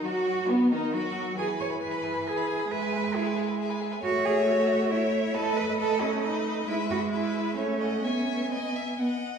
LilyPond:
<<
  \new Staff \with { instrumentName = "Violin" } { \time 3/4 \key e \lydian \tempo 4 = 135 fis'4 b8 dis'8 fis'4 | gis''16 b''16 gis''16 b''16 gis''16 b''16 gis''16 b''16 gis''16 b''16 gis''16 b''16 | e''16 gis''16 e''16 gis''16 e''16 gis''16 e''16 gis''16 e''16 gis''16 e''16 gis''16 | \key e \major e''2 e''4 |
dis''4 dis''4 dis''4 | e''4 e''4 e''8 fis''8 | gis''4 gis''4 fis''8 r8 | }
  \new Staff \with { instrumentName = "Violin" } { \time 3/4 \key e \lydian fis'4 b8 dis'8 fis'4 | gis'16 b'16 gis'16 b'16 gis'16 b'16 gis'16 b'16 gis'16 b'16 gis'16 b'16 | gis'16 b'16 gis'16 b'16 gis'16 b'16 gis'16 b'16 gis'16 b'16 gis'16 b'16 | \key e \major cis''2 cis''4 |
b'4 b'4 b'4 | b'4 b'4 cis''8 dis''8 | e''4 dis''8 e''8 dis''4 | }
  \new Staff \with { instrumentName = "Cello" } { \time 3/4 \key e \lydian fis'4 b8 dis'8 fis'4 | gis'8 cis''8 b'4 gis'4 | b'4 e'8 r4. | \key e \major fis'8 gis'8 fis'4 e'4 |
a'8 b'8 a'8 cis'8 dis'4 | e'8 fis'8 e'4 cis'4 | cis'4 b4 r4 | }
  \new Staff \with { instrumentName = "Viola" } { \clef bass \time 3/4 \key e \lydian fis4 b8 dis8 fis4 | e2. | gis2. | \key e \major a2. |
a2. | gis2 a4 | b2 b8 r8 | }
>>